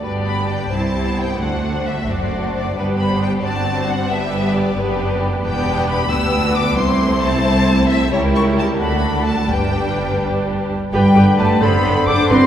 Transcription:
0.02 G1 G2 B3 D4 G4 B4 D5
0.27 B5
0.49 G5
0.71 C2 C4 E4 G4 C5 A5
1.05 B3
1.18 G5
1.39 D2 A3 D4 F#4 C5 F#5
1.87 E5
2.07 F#1 F#2 A3 D4 F#4 C5 D5
2.55 D5
2.76 G1 G2 B3 D4 G4 B4
2.99 B5
3.10 C5
3.23 G5
3.42 G1 G2 C4 D4 F#4 D5 A5
3.76 C5
3.89 F#5
4.09 G1 G2 B3 D4 G4 B4 E5
4.54 D5
4.77 F#1 F#2 B3 D4 G4 B4
5.43 E1 E2 B3 D4 G4 B4 G5
5.91 B5
6.10 D2 B3 D4 G4 B4 E6
6.45 F#4
6.55 D6
6.78 C2 A3 C4 E4 C5 C6
7.24 A5
7.89 E5
8.12 C#2 G3 E4 G4 A#4 C#5
8.35 C#6
8.59 A5
8.80 D2 A3 D4 F#4 A4 B5
9.26 A5
9.50 G1 G2 G3 D4 G4 B4 G5
10.92 G1 D3 G3 D4 G4 B4 D5 G5
11.16 G1 G4 B4 D5
11.38 G1 A3 G4 B4 D5 A5
11.61 F#1 B3 D4 A4 C5 D5 B5
11.84 F#1 A4 C5 D5
12.07 F#1 D4 A4 C5 D5 D6
12.29 G1 G2 C4 D4 G4 B4 D5 C6

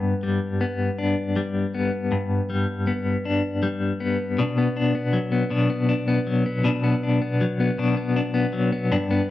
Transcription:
Already playing: G2 B3 D4
0.23 G3
0.61 B3
0.98 D4
1.36 G3
1.74 B3
2.12 G2
2.50 G3
2.87 B3
3.25 D4
3.63 G3
4.00 B3
4.38 B2 D4
4.58 B3
4.77 D4
4.95 B3
5.13 F#3
5.32 B3
5.50 B2 D4
5.70 B3
5.89 D4
6.08 B3
6.27 F#3
6.46 B3
6.64 B2 D4
6.84 B3
7.03 D4
7.22 B3
7.41 F#3
7.60 B3
7.78 B2 D4
7.97 B3
8.16 D4
8.34 B3
8.53 F#3
8.72 B3
8.92 G2 D4
9.11 B3

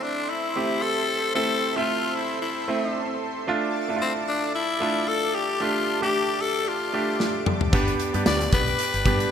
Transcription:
Already playing: A3 C4 E4 A4 C5 E5 C6
0.03 D4
0.29 E4
0.56 A3 C4 G4
0.82 A4
1.35 A3 C4 E4 A4
1.76 A3 C4 F4 E5
2.15 E4
2.42 E4
2.68 A3 C4 E4
3.47 A3 D4 F4 D5 A5 D6
3.89 A3 D4 E4
3.96 F4
4.02 C4
4.29 D4
4.55 E4
4.80 A3 D4 F4
5.08 A4
5.35 G4
5.60 A3 D4 F4 G4
6.01 A3 D4 G4
6.41 A4
6.68 F4
6.93 A3 D4 G4
7.20 snare
7.46 mid tom
7.61 floor tom
7.73 G1 B3 D4 G4 B4 G5, kick, closed hi-hat
7.88 closed hi-hat
8.00 closed hi-hat
8.14 G2 B3 D4 G4 B4 D5, closed hi-hat
8.26 D2 D4 G4 B4 D5, snare, tambourine
8.41 closed hi-hat
8.52 B1 B4, kick, closed hi-hat
8.67 closed hi-hat
8.79 closed hi-hat
8.94 G1, closed hi-hat
9.05 G2 B3 D4 G4, kick, closed hi-hat
9.20 closed hi-hat

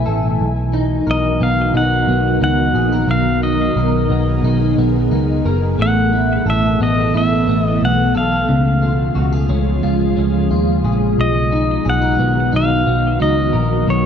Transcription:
Already playing: B2 E3 A3 B3 E4 G#5
0.06 A1 A4
0.40 B1 D#3 F#3 B3 F#4 A#4
0.73 D#4
1.07 B1 A#4 D#5
1.41 B1 B3 F5
1.74 B1 D#4 F#5
2.08 B1 B3
2.41 C#2 D#4 F#5
2.74 A#1 G#4
2.92 A#4
3.08 B1 B2 G#4 F5
3.43 D#4 D#5
3.76 B1 A#4
4.10 B1 B3
4.43 B1 D#4
4.78 B1 B3
5.11 C#2 D#4
5.45 F#1 A#4
5.79 A1 B2 E3 A3 B3 A4 F#5
6.13 E4
6.46 A1 A4 E5
6.80 A1 B3 D#5
7.14 A1 E4 E5
7.48 A1 B3
7.65 D#5
7.82 B1 F#5
8.15 B1 A4 F5
8.49 C#2 C#3 F3 G#3 F4 G#4
8.82 F4
9.15 C#2 F#4
9.33 G#4
9.49 C#2 C#4
9.83 C#2 F4
10.17 C#2 C#4
10.51 D#2 F4
10.84 A#1 G#4
11.18 B1 D#3 F#3 B3 F#4 D#5
11.52 D#4
11.85 B1 G#4
11.90 F#5
12.02 A#4
12.19 B1 B3
12.52 B1 D#4 F5
12.86 B1 B3
13.20 C#2 D#4 D#5
13.53 A#1 A#4
13.88 B1 B2 C#4 C#5

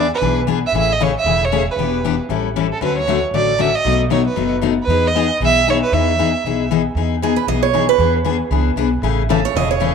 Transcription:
Already playing: E2 D5
0.14 B4
0.21 B1 E3 B3 D4 G#4
0.47 E3 B3 D4 G#4
0.66 E5
0.72 A1 C#3 E3 A3 C#4 G#4
0.78 E5
0.92 D#5
1.00 C#3 E3 A3 C#4 G#4 C#5
1.19 E5
1.24 E1 C#3 E3 A3 C#4 G#4
1.45 C#5
1.52 C#3 E3 A3 C#4 G#4
1.71 B4
1.76 E1 E3 B3 D4
1.80 G4
2.04 E3 B3 D4 G4
2.29 A1 E3 G3 C#4 E4 A4
2.56 E3 G3 C#4 E4 A4
2.72 A4
2.81 D2 D3 F#3 A3 C#4 F#4 B4
2.98 C#5
3.07 D3 F#3 A3 C#4 F#4
3.31 A1 D3 F#3 A3 C#4 F#4
3.35 D5
3.58 D3 F#3 A3 C#4 F#4 E5
3.75 D#5
3.85 B1 B2 F#3 A3 D#4 F#4
4.10 B2 F#3 A3 D#4 F#4 C#5
4.27 B4
4.36 F#1 B2 F#3 A3 D#4 F#4
4.62 B2 F#3 A3 D#4 F#4
4.83 B4
4.87 E2 E3 B3 D#4 G#4
5.07 D#5
5.15 E3 B3 D#4 G#4
5.40 B1 E3 B3 D#4 G#4
5.45 E5
5.68 E3 B3 D#4 G#4 C#5
5.83 B4
5.92 E2 E3 B3 D#4 G#4 E5
6.19 E3 B3 D#4 G#4
6.44 B1 E3 B3 D#4 G#4
6.71 E3 B3 D#4 G#4
6.95 E2 E3 B3 D#4 G#4
7.22 E3 B3 D#4 G#4
7.36 B4
7.47 B1 E3 B3 D#4 G#4 D#5
7.63 C#5
7.73 E3 B3 D#4 G#4
7.89 B4
7.98 E2 E3 B3 D4 G#4
8.25 E3 B3 D4 G#4
8.50 C#2 E3 B3 D4 G#4
8.76 B1 E3 B3 D4 G#4
9.02 A1 C#3 E3 A3 C#4 G#4
9.29 C#3 E3 A3 C#4 G#4 A4
9.45 C#5
9.54 E1 C#3 E3 A3 C#4 G#4 D#5
9.71 C#5
9.80 C#3 E3 A3 C#4 G#4

